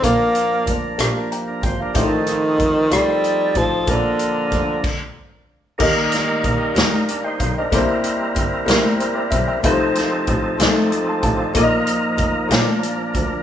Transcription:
<<
  \new Staff \with { instrumentName = "Upright piano" } { \time 6/8 \key ees \major \tempo 4. = 63 << { r2 <g'' bes''>8 g''16 <d'' f''>16~ | <d'' f''>16 r2 r8. | r2. | r2 r16 <ees'' g''>16 <d'' f''>16 <c'' ees''>16~ |
<c'' ees''>16 r4. r16 c''16 <bes' d''>16 <c'' e''>16 <e'' g''>16~ | <e'' g''>16 r2 <a'' c'''>16 <f'' a''>16 <d'' f''>16~ | <d'' f''>16 r2 r8. | } \\ { <bes d' f' d''>4~ <bes d' f' d''>16 r16 <bes d' f' g'>4~ <bes d' f' g'>16 r16 | <a ees' f' c''>4~ <a ees' f' c''>16 r16 <a ees' f' d''>4~ <a ees' f' d''>16 r16 | <bes d' f' c'' d''>4~ <bes d' f' c'' d''>16 r4. r16 | <bes ees' g' ees''>4~ <bes ees' g' ees''>16 r4. r16 |
<bes e' g' c''>4~ <bes e' g' c''>16 r16 <bes e' g' bes'>4~ <bes e' g' bes'>16 r16 | <a ees' f' ces'' c''>4~ <a ees' f' ces'' c''>16 r16 <aes a ees' f' d''>4~ <aes a ees' f' d''>16 r16 | <bes ees' f' d'' ees''>4~ <bes ees' f' d'' ees''>16 r16 <bes d' f' des'' d''>4~ <bes d' f' des'' d''>16 r16 | } >> }
  \new Staff \with { instrumentName = "Upright piano" } { \clef bass \time 6/8 \key ees \major bes,4. r4. | a,4. r4. | bes,4. r4. | ees4. r4. |
c4. r4. | c4. r4. | bes,4. bes,4. | }
  \new Staff \with { instrumentName = "Tonewheel organ" } { \time 6/8 \key ees \major << { r2 r16 <d' bes'>16 c''16 <d' bes'>16~ | <d' bes'>16 r2 r8. | r2. | r2 <d' bes'>16 <ees' c''>8 <d' bes'>16~ |
<d' bes'>16 r2 r8. | r2. | r2. | } \\ { <f bes des' d' bes'>2. | <f c' ees' g' a'>2. | <f bes d' bes'>4. r4. | <g bes ees' bes'>2. |
<g c' e' bes'>2. | <f c' ees' a'>2. | <f bes ees' aes' bes'>4. <f bes c' d' bes'>4. | } >> }
  \new Staff \with { instrumentName = "Tenor saxophone" } { \clef bass \time 6/8 \key ees \major bes4 r2 | ees4. g4 f8 | d2 r4 | r2. |
r2. | r2. | r2. | }
  \new Staff \with { instrumentName = "Double bass" } { \clef bass \time 6/8 \key ees \major bes,,4 f,,8 bes,,4 aes,,8 | a,,4 f,,8 c,4 a,,8 | bes,,4 f,,8 r4. | ees,4 bes,,8 ees,4 ces,8 |
c,4 g,,8 c,4 ces,8 | c,4 a,,8 c,4 a,,8 | bes,,4 f,,8 bes,,4 d,8 | }
  \new DrumStaff \with { instrumentName = "Drums" } \drummode { \time 6/8 <hh bd>8 hh8 <hh bd>8 <hh ss>8 hh8 <hh bd>8 | <hh bd>8 <hh ss>8 <hh bd>8 <hh ss>8 hh8 <hh bd>8 | <hh bd>8 hh8 <hh bd ss>8 <cymc bd>4. | <cymc bd>8 <hh sn>8 <hh bd>8 <hh sn>8 hh8 <hh bd>8 |
<hh bd>8 hh8 <hh bd>8 <hh sn>8 hh8 <hh bd>8 | <hh bd>8 <hh sn>8 <hh bd>8 <hh sn>8 hh8 <hh bd>8 | <hh bd>8 hh8 <hh bd>8 <hh sn>8 hh8 <hh bd>8 | }
>>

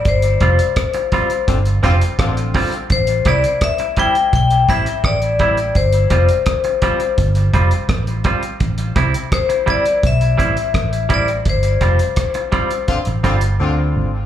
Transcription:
<<
  \new Staff \with { instrumentName = "Vibraphone" } { \time 4/4 \key g \mixolydian \tempo 4 = 84 c''2 r2 | c''8 d''8 e''8 g''8 g''8 e''8 d''4 | c''2 r2 | r4 c''8 d''8 e''4. d''8 |
c''2 r2 | }
  \new Staff \with { instrumentName = "Clean electric guitar" } { \time 4/4 \key g \mixolydian r8 <g c' f'>16 r8. <g c' f'>16 r8. <g c' f'>16 r8. <g c' f'>16 r16 | r8 <g c' e'>16 r8. <g c' e'>16 r8. <g c' e'>16 r8. <g c' e'>16 r16 | r8 <g c' f'>16 r8. <g c' f'>16 r8. <g c' f'>16 r8. <g c' f'>16 r16 | r8 <g c' e'>16 r8. <g c' e'>16 r8. <g c' e'>16 r8. <g c' e'>16 r16 |
r8 <g c' f'>16 r8. <g c' f'>16 r8. <g c' f'>16 r4 r16 | }
  \new Staff \with { instrumentName = "Horn section" } { \time 4/4 \key g \mixolydian r2 <d c' f'>16 r16 <d c' f'>16 r16 <d c' f'>8. r16 | r1 | r1 | r1 |
r2 <d c' f'>16 r16 <d c' f'>16 r16 <d c' f'>8. r16 | }
  \new Staff \with { instrumentName = "Fingered electric bass" } { \clef bass \time 4/4 \key g \mixolydian g,,8 f,,16 r4 r16 g,,8 f,,16 r16 a,,8 r8 | a,,8 c,16 r4 r16 b,,8 a,,16 r16 a,,4 | g,,8 f,,16 r4 r16 g,,8 f,,16 r16 a,,8 r8 | a,,8 c,16 r4 r16 b,,8 a,,16 r16 a,,4 |
g,,8 f,,16 r4. a,,16 g,,8 d,8 gis,,8 | }
  \new DrumStaff \with { instrumentName = "Drums" } \drummode { \time 4/4 <hh bd>16 hh16 <hh bd>16 hh16 <hh bd ss>16 hh16 <hh bd>16 hh16 <hh bd>16 hh16 <hh bd>16 hh16 <hh bd ss>16 hh16 <hho bd>16 hh16 | <hh bd>16 hh16 <hh bd ss>16 hh16 <hh bd ss>16 hh16 <hh bd>16 hh16 <hh bd>16 hh16 <hh bd>16 hh16 <hh bd ss>16 hh16 <hh bd>16 hh16 | <hh bd>16 hh16 <hh bd>16 hh16 <hh bd ss>16 hh16 <hh bd>16 hh16 <hh bd>16 hh16 <hh bd>16 hh16 <hh bd ss>16 hh16 <hh bd>16 hh16 | <hh bd>16 hh16 <hh bd ss>16 hh16 <hh bd ss>16 hh16 <hh bd>16 hh16 <hh bd>16 hh16 <hh bd>16 hh16 <hh bd ss>16 hh16 <hh bd>16 hh16 |
<hh bd>16 hh16 <hh bd ss>16 hh16 <hh bd ss>16 hh16 <hh bd>16 hh16 <hh bd>16 hh16 <hh bd>16 hh16 r4 | }
>>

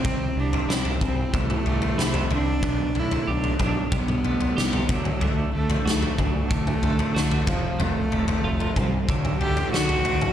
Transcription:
<<
  \new Staff \with { instrumentName = "Cello" } { \time 4/4 \key d \mixolydian \tempo 4 = 93 c'8 d'8 c'8 c'8 a4. d'8~ | d'8 e'8 d'8 d'8 b4. fis8 | a8 a8 a8 a2 f8 | a8. a8. g8 fis8 g'8 fis'4 | }
  \new Staff \with { instrumentName = "Clean electric guitar" } { \time 4/4 \key d \mixolydian c8 g8 e'8 c'8 e8 g8 e'8 c'8 | b,8 a8 g'8 d'8 g8 a8 g'8 d8 | d8 a8 fis'8 d'8 d8 a8 fis'8 f,8 | f,8 a8 f'8 c'8 d8 a8 fis'8 d'8 | }
  \new Staff \with { instrumentName = "Fingered electric bass" } { \clef bass \time 4/4 \key d \mixolydian c,8 c,8 c,8 c,8 c,8 c,8 c8 c,8 | b,,8 b,,8 b,,8 b,,8 b,,8 b,,8 c,8 d,8 | d,8 d,8 d,8 d,8 d,8 d,8 d8 f,,8 | f,,8 f,,8 f,,8 c,8 d,8 d,8 d8 d,8 | }
  \new DrumStaff \with { instrumentName = "Drums" } \drummode { \time 4/4 <bd tomfh>8. tomfh16 sn16 tomfh16 <bd toml>8 <bd tomfh>16 toml16 tomfh16 tomfh16 sn16 tomfh16 tomfh8 | <bd tomfh>8 tomfh16 tomfh16 r16 tomfh16 <bd toml>8 <bd tomfh>16 toml16 tomfh16 tomfh16 sn16 tomfh16 <bd tomfh>16 toml16 | tomfh8. tomfh16 sn16 tomfh16 <bd toml>8 <bd tomfh>16 toml16 tomfh16 tomfh16 sn16 tomfh16 <bd tomfh>8 | tomfh8 tomfh16 tomfh16 r16 tomfh16 <bd toml>8 <bd tomfh>16 toml16 tomfh16 tomfh16 sn16 tomfh16 tomfh16 toml16 | }
>>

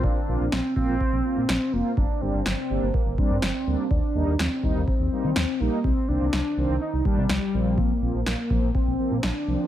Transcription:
<<
  \new Staff \with { instrumentName = "Soft synth lead" } { \time 4/4 \key bes \major \tempo 4 = 124 d'4 c'8 c'2 bes8 | d'8 c'4. bes8 c'4. | d'4 c'4 c'4. bes8 | c'8 d'4. ees'8 g4. |
bes4 bes4 c'4 d'4 | }
  \new Staff \with { instrumentName = "Analog polysynth" } { \time 4/4 \key bes \major <bes c' f'>8 <bes c' f'>8 r8 <bes c' f'>8 r8 <bes c' f'>8 r8 <bes c' f'>8 | r8 <g bes d'>8 r8 <g bes d'>8 r8 <g bes d'>8 r8 <g bes d'>8 | r8 <g bes ees'>8 r8 <g bes ees'>8 r8 <g bes ees'>8 r8 <g bes ees'>8 | r8 <ees bes c'>8 r8 <ees bes c'>8 r8 <ees bes d'>8 r8 <f bes c'>8~ |
<f bes c'>8 <f bes c'>8 r8 <f bes c'>8 r8 <f bes c'>8 r8 <f bes c'>8 | }
  \new Staff \with { instrumentName = "Analog synth bass" } { \clef bass \time 4/4 \key bes \major r8 bes,,16 bes,,16 bes,,16 r16 bes,,16 bes,,16 r16 bes,,16 r16 bes,16 bes,,16 r16 f,,16 r16 | g,,16 r16 g,,16 g,,16 g,,16 r16 g,,16 g,,16 r16 g,,16 r16 g,16 g,,16 r16 d,16 r16 | ees,16 r16 ees,16 ees,16 ees,16 r16 ees,16 ees,16 r16 ees,16 r16 ees16 ees,16 r16 bes,,16 r16 | c,16 r16 c,16 c,16 c,16 r16 c,16 c,16 r16 c,16 r16 c16 c,16 r16 bes,,8~ |
bes,,16 r16 bes,,16 bes,,16 bes,,16 r16 bes,,16 bes,,16 r16 bes,,16 r16 bes,16 bes,,16 r16 c,16 r16 | }
  \new DrumStaff \with { instrumentName = "Drums" } \drummode { \time 4/4 bd4 sn8 bd8 bd4 sn4 | bd4 sn4 bd8 bd8 sn4 | bd4 sn8 bd8 bd4 sn4 | bd4 sn4 r8 bd8 sn4 |
bd4 sn8 bd8 bd4 sn4 | }
>>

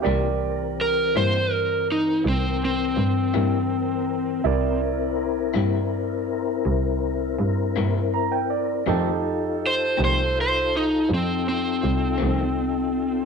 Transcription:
<<
  \new Staff \with { instrumentName = "Upright piano" } { \time 12/8 \key c \mixolydian \tempo 4. = 54 << { r1. | r1 r4 bes''16 g''16 d''8 | r1. | } \\ { <g' bes' d''>1. | <e' bes' d''>1. | <ees' g' a'>1. | } >> }
  \new Staff \with { instrumentName = "Electric slide guitar" } { \time 12/8 \key c \mixolydian r4 bes'8 c''8 bes'8 ees'8 c'8 c'2~ c'8~ | c'8 r1 r4. | r4 c''8 c''8 c''8 ees'8 c'8 c'2~ c'8 | }
  \new Staff \with { instrumentName = "Tonewheel organ" } { \time 12/8 \key c \mixolydian <e c' bes'>1. | <c' e' bes'>1. | <ees' f' a'>1. | }
  \new Staff \with { instrumentName = "Clean electric guitar" } { \clef bass \time 12/8 \key c \mixolydian <c g bes e'>8 r4 <c g bes e'>8 r2 r8 <c g bes e'>8 r4 | r4. <c g bes e'>8 r2 r8 <c g bes e'>8 r4 | <f, ees a c'>8 r4 <f, ees a c'>8 r2 r8 <f, ees a c'>8 r4 | }
  \new Staff \with { instrumentName = "Double bass" } { \clef bass \time 12/8 \key c \mixolydian c,4. g,4. c,4 g,8 g,4. | c,4. g,4. c,4 g,8 g,4. | f,4. c,4. f,4 c,8 c,4. | }
>>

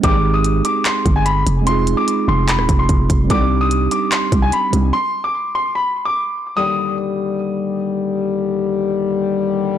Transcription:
<<
  \new Staff \with { instrumentName = "Grand piano" } { \time 4/4 \key ees \major \tempo 4 = 147 d'''8. ees'''8. d'''8 c'''8. aes''16 b''8 r8 | c'''8. d'''8. c'''8 b''8. c'''4~ c'''16 | d'''8. ees'''8. d'''8 c'''8. aes''16 b''8 r8 | c'''8. d'''8. c'''8 b''8. d'''4~ d'''16 |
ees'''2. r4 | r1 | }
  \new Staff \with { instrumentName = "Tine electric piano" } { \time 4/4 \key ees \major <aes c' ees' g' aes'>1 | <aes c' ees' f' aes'>1 | <g c' d' ees' g'>2.~ <g c' d' ees' g'>8 <g c' d' ees' g'>8 | r1 |
r1 | r1 | }
  \new Staff \with { instrumentName = "Brass ensemble" } { \clef bass \time 4/4 \key ees \major <ees, c g>8 r2. r8 | r1 | <ees, d g>8 r2. r8 | r1 |
<ees, d g>1~ | <ees, d g>1 | }
  \new Staff \with { instrumentName = "808-style bass" } { \clef bass \time 4/4 \key ees \major aes,,4. r4 g,,4 f,,8~ | f,,8. r8. f,,8. ees,,16 f,,8 f,,8 f,,8 | c,4. r4 c,8 r8 c,8 | r1 |
r1 | r1 | }
  \new DrumStaff \with { instrumentName = "Drums" } \drummode { \time 4/4 <hh bd>4 hh8 hh8 <hc hh>8 <hh bd>8 hh8 hh8 | hh8 hh8 hh4 <hc hh>16 ss16 <hh bd>8 <hh bd>8 <hh bd>8 | <hh bd>4 hh8 hh8 <hc hh>8 <hh bd>8 hh8 hh8 | r4 r4 r4 r4 |
r4 r4 r4 r4 | r4 r4 r4 r4 | }
>>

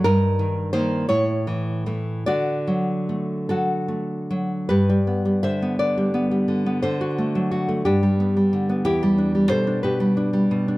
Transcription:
\new Staff \with { instrumentName = "Nylon-string guitar" } { \time 6/8 \key d \major \tempo 4. = 58 << { <ees' bes'>4 <ees' c''>8 <e' cis''>4. | <fis' d''>4. <fis' a'>4. | \key g \major <g' b'>4 <c'' e''>8 <b' d''>4. | <a' c''>4. <d' g'>4. |
<e' g'>4 <a' c''>8 <g' b'>4. | } \\ { g,8 ees8 <ees bes>8 a,8 e8 <e a>8 | d8 fis8 a8 fis8 a8 fis8 | g,16 g16 b16 g16 d16 b16 d16 g16 b16 g16 d16 b16 | d16 fis'16 a16 fis16 fis'16 a16 g,16 g16 b16 g16 d16 b16 |
e,16 g16 d'16 g16 b,16 d'16 b,16 g16 d'16 g16 b,16 d'16 | } >> }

